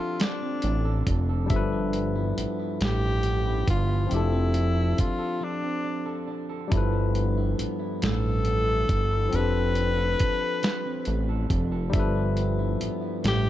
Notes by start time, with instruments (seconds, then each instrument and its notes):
Already playing: clean electric guitar F3 C4 D4, tine electric piano F3 C4 D4 G4 A4, tenor saxophone F4
0.00 clean electric guitar A4
0.20 clean electric guitar F3, tenor saxophone D4, snare, closed hi-hat
0.42 clean electric guitar C4
0.62 analog synth bass A1, clean electric guitar D4, closed hi-hat
0.85 clean electric guitar A4
1.07 analog synth bass F1, clean electric guitar D4, kick, closed hi-hat
1.29 clean electric guitar A4
1.46 tine electric piano G3 D4, closed hi-hat
1.50 analog synth bass G1, clean electric guitar G2, tine electric piano F3 E5, kick
1.54 tine electric piano A4 B4
1.73 clean electric guitar F3
1.93 clean electric guitar B3, closed hi-hat
2.16 clean electric guitar E4
2.37 analog synth bass A1, clean electric guitar B3, closed hi-hat
2.59 clean electric guitar E4
2.80 analog synth bass A1, clean electric guitar G2, tenor saxophone G4, snare, closed hi-hat
3.02 clean electric guitar F3
3.23 clean electric guitar B3, closed hi-hat
3.46 clean electric guitar E4
3.68 analog synth bass G1, clean electric guitar B3, tenor saxophone F4, kick, closed hi-hat
3.89 clean electric guitar E4
4.07 tine electric piano F3 C4
4.11 analog synth bass F1, clean electric guitar F3, tine electric piano D4 G4, tenor saxophone E4, closed hi-hat
4.17 tine electric piano A4
4.33 clean electric guitar C4
4.54 clean electric guitar D4, closed hi-hat
4.75 clean electric guitar A4
4.97 clean electric guitar D4, tenor saxophone F4, kick, closed hi-hat
5.19 clean electric guitar A4
5.41 clean electric guitar F3, tenor saxophone D4
5.62 clean electric guitar C4
5.84 clean electric guitar D4
6.06 clean electric guitar A4
6.28 clean electric guitar D4
6.49 clean electric guitar A4
6.68 clean electric guitar G2, tine electric piano G3 D4 E4, closed hi-hat
6.72 analog synth bass G1, tine electric piano F3 A4, kick
6.77 tine electric piano B4
6.93 clean electric guitar F3
7.15 clean electric guitar B3, closed hi-hat
7.37 clean electric guitar E4
7.58 clean electric guitar B3, closed hi-hat
7.79 clean electric guitar E4
8.02 analog synth bass A1, clean electric guitar G2, tenor saxophone A4, snare, closed hi-hat
8.23 clean electric guitar F3
8.45 clean electric guitar B3, closed hi-hat
8.67 clean electric guitar E4
8.89 analog synth bass G1, clean electric guitar B3, kick, closed hi-hat
9.11 clean electric guitar E4
9.29 tine electric piano F3 C4, clean electric guitar F3, closed hi-hat
9.33 analog synth bass F1, tine electric piano D4 G4, tenor saxophone B4
9.38 tine electric piano A4
9.54 clean electric guitar C4
9.75 clean electric guitar D4, closed hi-hat
9.97 clean electric guitar A4
10.19 analog synth bass A1, clean electric guitar D4, kick, closed hi-hat
10.40 clean electric guitar A4
10.63 clean electric guitar F3, snare, closed hi-hat
10.85 clean electric guitar C4
11.05 analog synth bass A1, clean electric guitar D4, closed hi-hat
11.29 clean electric guitar A4
11.50 analog synth bass F1, clean electric guitar D4, kick, closed hi-hat
11.72 clean electric guitar A4
11.90 clean electric guitar G2, tine electric piano G3 D4 E5, kick, closed hi-hat
11.94 analog synth bass G1, tine electric piano F3 A4
11.99 tine electric piano B4
12.16 clean electric guitar F3
12.37 clean electric guitar B3, closed hi-hat
12.59 clean electric guitar E4
12.80 analog synth bass A1, clean electric guitar B3, closed hi-hat
13.01 clean electric guitar E4
13.23 analog synth bass A1, clean electric guitar G2, snare, closed hi-hat
13.28 tenor saxophone G4
13.45 clean electric guitar F3